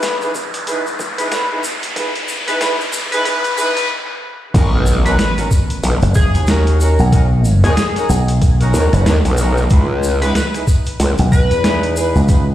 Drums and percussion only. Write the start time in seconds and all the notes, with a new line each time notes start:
0.02 snare, closed hi-hat, shaker
0.21 cross-stick, shaker
0.35 kick, shaker
0.54 closed hi-hat, shaker
0.67 closed hi-hat, shaker
0.87 shaker
0.99 kick, shaker
1.18 closed hi-hat, shaker
1.32 snare, closed hi-hat, shaker
1.64 shaker
1.83 closed hi-hat, shaker
1.96 kick, closed hi-hat, shaker
2.15 closed hi-hat
2.28 shaker
2.48 closed hi-hat, shaker
2.61 snare, closed hi-hat, shaker
2.80 cross-stick, shaker
2.93 shaker
3.12 closed hi-hat, shaker
3.25 kick, closed hi-hat, shaker
3.44 closed hi-hat, shaker
3.58 shaker
3.77 cross-stick, closed hi-hat, shaker
4.54 kick, closed hi-hat, crash, shaker
4.86 shaker
5.06 closed hi-hat, shaker
5.19 snare, closed hi-hat, shaker
5.38 cross-stick, closed hi-hat, shaker
5.51 kick, shaker
5.70 closed hi-hat, shaker
5.83 closed hi-hat, shaker
6.02 closed hi-hat, shaker
6.15 kick, shaker
6.34 closed hi-hat, shaker
6.47 cross-stick, snare, closed hi-hat, shaker
6.67 closed hi-hat
6.81 shaker
6.99 shaker
7.12 kick, closed hi-hat, shaker
7.45 shaker
7.64 closed hi-hat, shaker
7.77 snare, closed hi-hat, shaker
7.96 cross-stick, closed hi-hat, shaker
8.10 shaker
8.28 closed hi-hat, shaker
8.42 kick, closed hi-hat, shaker
8.61 closed hi-hat, shaker
8.74 shaker
8.93 cross-stick, closed hi-hat, shaker
9.06 snare, closed hi-hat, shaker
9.25 cross-stick, closed hi-hat, shaker
9.37 shaker
9.57 shaker
9.70 kick, closed hi-hat, shaker
10.03 shaker
10.22 closed hi-hat, shaker
10.35 snare, closed hi-hat, shaker
10.54 cross-stick, closed hi-hat, shaker
10.67 kick, shaker
10.86 closed hi-hat, shaker
11.00 closed hi-hat, shaker
11.18 closed hi-hat, shaker
11.32 kick, shaker
11.51 closed hi-hat, shaker
11.64 cross-stick, snare, closed hi-hat, shaker
11.83 closed hi-hat
11.96 shaker
12.16 shaker
12.28 kick, closed hi-hat, shaker